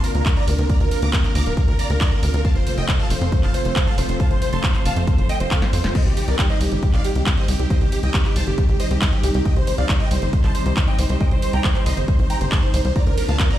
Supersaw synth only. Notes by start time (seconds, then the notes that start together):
0.04 A#4
0.15 A#4
0.26 A#4
0.37 D5 A#5
0.48 A#4
0.59 A#4
0.69 D5 A#5
0.80 A#4
0.91 A#4
1.02 A#5 D6
1.13 A#4
1.24 A#4
1.35 A#5 D6
1.46 A#4
1.57 A#4
1.68 A#4
1.79 D5 A#5
1.90 A#4
2.01 D5 A#5
2.12 A#4
2.23 A#4
2.34 A#4
2.45 F5 A5
2.56 C5
2.67 C5
2.78 D#5 G5
2.89 C5
2.99 F5 A5
3.10 C5
3.21 C5
3.32 C5
3.43 F5 A5
3.54 C5
3.65 C5
3.76 C5
3.87 F5 A5
3.98 C5
4.09 C5
4.20 F5 A5
4.31 C5
4.42 C5
4.53 A5 C6
4.64 C5
4.75 C5
4.86 F5 A5
4.97 C5
5.07 C5
5.18 C5
5.29 D#5 G5
5.40 C5
5.51 A4 F5
5.62 C5
5.73 C5
5.84 C5
5.95 C5 D#5
6.06 G4
6.17 G4
6.28 A#4 D5
6.39 G4
6.50 C5 D#5
6.61 G4
6.72 G4
6.83 G4
6.94 D5 F5
7.05 G4
7.16 G4
7.27 G4
7.37 C5 D#5
7.48 G4
7.59 G4
7.70 C5 D#5
7.81 G4
7.92 G4
8.03 D#5 G5
8.14 G4
8.25 G4
8.36 C5 A5
8.47 G4
8.58 G4
8.69 G4
8.80 C5 D#5
8.91 G4
9.02 C5 D#5
9.13 G4
9.24 G4
9.35 G4
9.46 D#5 G5
9.56 C5
9.67 C5
9.78 D5 F5
9.89 C5
10.00 D#5 G5
10.11 C5
10.22 C5
10.33 C5
10.44 C5 A5
10.55 C5
10.66 C5
10.77 C5
10.88 D#5 G5
10.99 C5
11.10 C5
11.21 D#5 G5
11.32 C5
11.42 C5
11.53 G5 A#5
11.64 C5
11.75 C5
11.86 D#5 C6
11.97 C5
12.08 C5
12.19 C5
12.30 G5 A#5
12.41 C5
12.52 C5 A5
12.63 C5
12.74 C5
12.85 C5
12.96 D5 A#5
13.07 A#4
13.18 A#4
13.29 F5 A5
13.40 A#4
13.50 D5 A#5